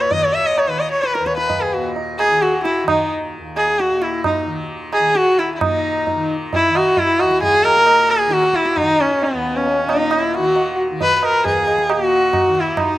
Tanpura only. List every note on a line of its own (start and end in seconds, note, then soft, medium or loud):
0.00 1.19 D#2 medium
0.00 1.75 A#2 medium
0.00 0.10 D#3 medium
0.10 0.66 D#3 medium
0.66 2.29 D#3 medium
1.20 3.38 D#2 medium
1.75 3.91 A#2 medium
2.29 2.83 D#3 medium
2.83 4.46 D#3 medium
3.38 7.21 D#2 medium
3.92 5.61 A#2 medium
4.46 4.99 D#3 medium
4.99 6.15 D#3 medium
5.61 7.74 A#2 medium
6.15 6.68 D#3 medium
6.68 8.27 D#3 medium
7.21 9.33 D#2 medium
7.74 9.85 A#2 medium
8.27 8.80 D#3 medium
8.80 10.38 D#3 medium
9.33 11.43 D#2 medium
9.85 11.95 A#2 medium
10.38 10.91 D#3 medium
10.91 12.48 D#3 medium
11.43 12.98 D#2 medium
11.95 12.98 A#2 medium
12.48 12.98 D#3 medium